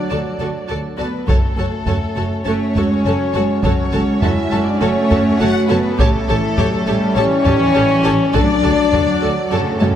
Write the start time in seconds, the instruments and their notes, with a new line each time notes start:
Already playing: trombone section F#3 D4, cello section F#3, french horn section D4, violin section D5
0.10 double bass section D2, viola section F#4 A4, violin section D5 A5
0.39 double bass section D2, viola section F#4 A4, violin section D5 A5
0.69 double bass section D2, viola section F#4 A4, violin section D5 A5
0.98 double bass section D2, french horn section B3, viola section F#4 A4, violin section B4 D5 A5
1.27 double bass section F#1, trombone section F#3 C#4, french horn section A3, viola section F#4 A4, violin section A4 C#5 A5, taiko
1.57 double bass section F#1, viola section F#4 A4, violin section C#5 A5
1.86 double bass section F#1, viola section F#4 A4, violin section C#5 A5, taiko low
2.16 double bass section F#1, viola section F#4 A4, violin section C#5 A5
2.45 double bass section F#1, cello section A3, french horn section C#4, viola section F#4 A4, violin section C#5 A5
2.75 double bass section F#1, cello section G#3, viola section F#4 A4, violin section C#5 A5, taiko low
3.04 double bass section F#1, cello section F#3, viola section F#4 A4, violin section C#5 A5
3.34 double bass section F#1, cello section G#3, viola section F#4 A4, violin section C#5 A5
3.63 double bass section F#1, cello section F#3, french horn section C#4, viola section F#4 A4, violin section C#5 A5, taiko
3.92 double bass section F#1, cello section G#3, viola section F#4 A4, violin section C#5 A5
4.22 double bass section F#1, french horn section E4, viola section F#4 A4, violin section C#5 E5 A5, taiko low
4.51 double bass section F#1, viola section F#4 A4, violin section C#5 A5
4.65 french horn section D4, violin section D5
4.80 double bass section F#1, cello section A3, french horn section C#4, viola section F#4 A4, violin section C#5 A5
5.10 double bass section F#1, viola section F#4 A4, violin section C#5 A5, taiko low
5.39 double bass section F#1, french horn section F#4, viola section F#4 A4, violin section C#5 F#5 A5
5.68 double bass section F#1, french horn section B3, viola section F#4 A4, violin section B4 C#5 A5
5.97 double bass section A1, cello section C#3, trombone section G3 C#4, french horn section A3, viola section G4 A4, violin section A4 C#5 A5, taiko
6.28 double bass section A1, cello section E3, viola section G4 A4, violin section C#5 A5
6.58 double bass section A1, cello section F#3, viola section G4 A4, violin section C#5 A5, taiko low
6.87 double bass section A1, cello section G3, viola section G4 A4, violin section C#5 A5
7.16 double bass section A1, cello section E3, french horn section C#4, viola section G4 A4, violin section C#5 A5
7.44 double bass section A1, viola section G4 A4, violin section C#5 A5, taiko low
7.74 double bass section A1, viola section G4 A4, violin section C#5 A5
8.04 double bass section A1, viola section G4 A4, violin section C#5 A5
8.33 double bass section D2, cello section F#3, trombone section F#3 D4, french horn section D4, viola section F#4 A4, violin section D5 A5, taiko
8.62 double bass section D2, viola section F#4 A4, violin section D5 A5
8.92 double bass section D2, viola section F#4 A4, violin section D5 A5, taiko low
9.22 double bass section D2, viola section F#4 A4, violin section D5 A5
9.51 double bass section F#2, timpani F#2, cello section C#3, french horn section A3, trombone section C#4, viola section F#4 A4, violin section A4 C#5 A5
9.60 timpani F#2
9.67 timpani F#2
9.75 timpani F#2
9.80 double bass section F#2, timpani F#2, viola section F#4 A4, violin section C#5 A5, taiko high
9.91 timpani F#2